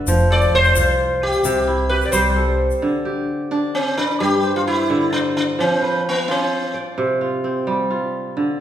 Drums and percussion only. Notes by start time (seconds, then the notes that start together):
0.07 shaker
0.18 shaker
0.41 shaker
0.64 shaker
0.76 shaker
1.32 shaker
1.44 shaker
2.02 shaker
2.13 shaker
2.71 shaker